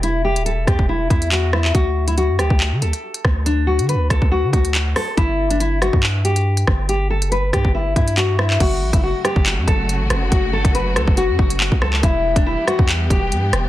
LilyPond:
<<
  \new Staff \with { instrumentName = "Nylon-string guitar" } { \time 4/4 \key fis \phrygian \tempo 4 = 140 e'8 g'8 a'8 g'8 e'8 e'8 fis'8 e'8 | fis'8. e'16 fis'8 g'8 r8 a'4. | d'8 fis'8 b'8 a'8 fis'8 fis'4 a'8 | e'8. d'16 e'8 fis'8 r8 g'4. |
g'8 a'8 b'8 g'8 e'8 e'8 fis'8 e'8 | fis'8. e'16 fis'8 g'8 r8 a'4. | fis'8 a'8 b'8 a'8 fis'8 fis'4 a'8 | e'8. d'16 e'8 fis'8 r8 g'4. | }
  \new Staff \with { instrumentName = "String section" } { \clef bass \time 4/4 \key fis \phrygian r1 | r1 | r1 | r1 |
r1 | <cis fis a fis'>1~ | <cis fis a fis'>1 | <e g b g'>1 | }
  \new Staff \with { instrumentName = "808-style bass" } { \clef bass \time 4/4 \key fis \phrygian e,,8. d,,16. e,,16. e,16 e,,8. e,4. | d,4~ d,16 fis,16 d,16 d,8 d16 d,16 r8. d,8~ | d,8. d16. d,16. d,16 d,8 d16 d,4 r8 | g,,4.~ g,,16 g,4.~ g,16 g,,8~ |
g,,8. fis,,16. g,,16. g,16 g,,8. g,4. | fis,,8 a,,16 fis,,8 r8 fis,,8 fis,16 fis,,8. a,,16 fis,,8 | fis,,8 g,,16 fis,,8. cis,16 fis,,8 fis,16 fis,,8. cis,8. | e,,8. e,,8 r8 e,8. e,,8 g,8 e,,8 | }
  \new DrumStaff \with { instrumentName = "Drums" } \drummode { \time 4/4 hh8. hh16 hh8 <hh bd ss>16 bd16 r8 <hh bd>16 hh16 <hc hh>8 ss16 hc16 | <hh bd>8. hh16 hh8 <hh ss>16 bd16 hc8 hh16 hh16 r16 hh16 <bd ss>8 | hh8. hh16 hh8 <hh bd ss>16 bd16 r8 <hh bd>16 hh16 <hc hh>8 <hho ss>8 | <hh bd>8. hh16 hh8 <hh ss>16 bd16 hc8 hh16 hh16 r16 hh16 <bd ss>8 |
hh8. hh16 hh8 <hh bd ss>16 bd16 r8 <hh bd>16 hh16 <hc hh>8 ss16 hc16 | <cymc hh bd>8. <hh bd>16 r8 <hh ss>16 bd16 <hc hh>8 <hh bd>8 hh8 <hh ss>8 | <hh bd>8. <hh bd>16 hh8 <hh ss>16 bd16 hh8 bd16 hh16 hc16 bd16 ss16 hc16 | <hh bd>8. <hh bd>16 r8 <hh ss>16 bd16 <hc hh>8 <hh bd>8 hh8 <hh ss>8 | }
>>